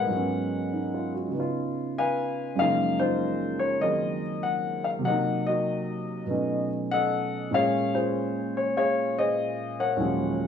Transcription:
0.00 0.11 C#2 medium
0.00 0.11 A#2 soft
0.00 0.11 D#3 soft
0.00 0.11 F3 soft
0.00 0.12 C4 soft
0.00 0.11 C#4 soft
0.00 1.13 A#4 medium
0.00 1.12 B4 medium
0.00 1.12 F#5 medium
0.06 1.32 G#2 soft
0.06 1.33 F#3 soft
0.11 1.35 G#3 soft
0.11 1.31 B3 soft
0.16 1.37 C#4 medium
0.73 1.12 D#4 soft
0.94 1.26 F4 soft
1.14 1.46 F#4 soft
1.28 2.55 C#3 soft
1.33 2.57 B3 soft
1.33 2.59 D#4 soft
1.40 2.61 F4 medium
1.98 2.55 B4 medium
1.98 2.56 F5 medium
1.98 2.61 G#5 medium
2.55 5.04 F#2 soft
2.55 5.04 C#3 soft
2.55 5.05 F3 soft
2.55 5.05 G#3 soft
2.55 3.80 A#3 soft
2.55 2.98 F5 medium
2.60 2.99 D#4 medium
2.60 3.79 G#4 medium
2.60 3.79 A#4 medium
3.00 4.20 D#4 medium
3.00 4.20 F4 medium
3.00 3.58 C5 medium
3.59 3.81 C#5 medium
3.80 5.04 D#3 soft
3.80 5.01 F#3 soft
3.80 5.05 A#3 soft
3.80 5.05 C4 soft
3.80 5.06 G#4 soft
3.80 5.02 A#4 medium
3.80 4.45 D#5 medium
4.43 4.86 F#5 medium
4.84 4.89 F5 medium
4.99 6.25 C3 medium
4.99 6.25 F#3 medium
5.05 6.29 A#3 medium
5.05 5.47 A#4 medium
5.05 5.45 D#5 medium
5.05 5.44 F#5 medium
5.10 6.29 D#4 medium
5.47 6.67 F#4 medium
5.47 6.25 A#4 soft
5.47 6.66 D#5 medium
6.26 7.51 B2 soft
6.26 7.51 F#3 soft
6.26 7.52 A3 soft
6.26 7.52 B3 soft
6.30 7.51 C#4 soft
6.30 7.53 D#4 soft
6.91 7.49 A4 medium
6.91 7.49 D#5 medium
6.91 7.49 F#5 medium
7.51 9.96 A#2 soft
7.51 9.97 G#3 soft
7.51 9.98 A#3 soft
7.51 9.99 C#4 medium
7.51 8.56 C#5 medium
7.51 7.96 F5 loud
7.55 7.93 G#4 medium
7.94 9.13 F4 medium
7.94 8.76 G#4 medium
7.94 8.58 C5 medium
8.57 8.76 C#5 medium
8.77 9.17 G#4 medium
8.77 9.19 C#5 medium
8.77 9.95 F5 medium
9.18 9.95 G#4 medium
9.18 9.95 C5 medium
9.18 9.81 D#5 medium
9.80 10.47 A#4 medium
9.80 10.47 C#5 medium
9.80 10.47 F#5 medium
9.96 10.47 D#2 medium
9.96 10.47 A#2 medium
9.96 10.47 F#3 soft
9.96 10.47 G#3 medium
9.96 10.47 C#4 medium
10.01 10.47 F3 medium

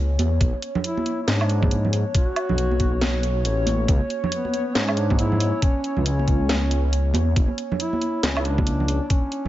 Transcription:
0.00 0.18 C#2 loud
0.00 9.48 C#5 medium
0.19 0.39 E2 loud
0.19 open hi-hat medium
0.19 high conga medium
0.41 0.53 B1 loud
0.41 kick loud
0.41 closed hi-hat medium
0.62 closed hi-hat medium
0.75 low conga loud
0.84 1.20 E4 loud
0.84 closed hi-hat medium
0.97 high conga medium
1.06 closed hi-hat medium
1.22 1.29 E4 medium
1.28 2.04 G#2 medium
1.28 1.93 D4 loud
1.28 snare loud
1.28 closed hi-hat medium
1.41 low woodblock medium
1.50 closed hi-hat medium
1.62 kick loud
1.62 high conga loud
1.62 low conga medium
1.71 closed hi-hat medium
1.85 low conga medium
1.93 open hi-hat medium
2.15 3.41 F#4 loud
2.15 kick loud
2.15 closed hi-hat medium
2.36 closed hi-hat medium
2.36 low woodblock medium
2.49 3.44 B1 medium
2.49 low conga medium
2.58 closed hi-hat medium
2.71 high conga medium
2.80 kick medium
2.80 closed hi-hat medium
3.02 snare loud
3.02 closed hi-hat medium
3.02 high conga medium
3.23 closed hi-hat medium
3.45 3.87 A1 medium
3.45 closed hi-hat medium
3.67 open hi-hat medium
3.67 high conga loud
3.88 4.01 C#2 loud
3.88 kick loud
3.88 closed hi-hat medium
4.10 closed hi-hat medium
4.24 low conga medium
4.32 4.77 B3 loud
4.32 closed hi-hat medium
4.45 high conga medium
4.54 closed hi-hat medium
4.75 5.52 G#2 medium
4.75 4.99 C#4 loud
4.75 snare loud
4.75 closed hi-hat medium
4.89 low woodblock medium
4.97 5.18 D4 loud
4.97 closed hi-hat soft
5.10 kick loud
5.10 high conga loud
5.10 low conga medium
5.19 5.64 E4 loud
5.19 closed hi-hat medium
5.32 low conga medium
5.40 open hi-hat medium
5.62 6.05 C#4 loud
5.62 kick loud
5.62 closed hi-hat medium
5.84 closed hi-hat soft
5.97 7.13 C#2 medium
5.97 low conga medium
6.06 7.11 C#4 loud
6.06 closed hi-hat medium
6.19 high conga medium
6.28 kick medium
6.28 closed hi-hat medium
6.49 snare loud
6.49 closed hi-hat medium
6.49 high conga medium
6.71 closed hi-hat medium
6.93 closed hi-hat medium
7.14 7.35 E2 loud
7.14 open hi-hat medium
7.14 high conga medium
7.36 7.48 F#1 loud
7.36 kick loud
7.36 closed hi-hat medium
7.58 closed hi-hat soft
7.72 low conga medium
7.80 8.20 E4 loud
7.80 closed hi-hat medium
7.93 high conga medium
8.02 closed hi-hat medium
8.23 9.00 C#2 medium
8.23 8.41 C#4 loud
8.23 snare loud
8.23 closed hi-hat medium
8.37 8.47 E4 medium
8.37 low woodblock medium
8.45 9.12 D4 loud
8.45 closed hi-hat medium
8.58 kick loud
8.58 high conga loud
8.58 low conga medium
8.67 closed hi-hat medium
8.80 low conga medium
8.88 open hi-hat medium
9.10 9.48 C#4 loud
9.10 kick loud
9.10 closed hi-hat medium
9.32 closed hi-hat medium
9.45 9.48 F#1 medium

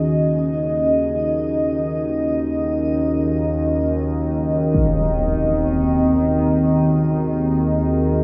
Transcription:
0.00 8.24 D#2 medium
0.00 8.24 D#3 medium
0.00 4.74 C#4 medium
0.00 8.24 F#4 medium
0.00 8.24 G#4 medium
0.00 8.24 D#5 medium
4.74 8.24 C4 medium
4.74 impact medium
6.72 8.24 G#4 medium

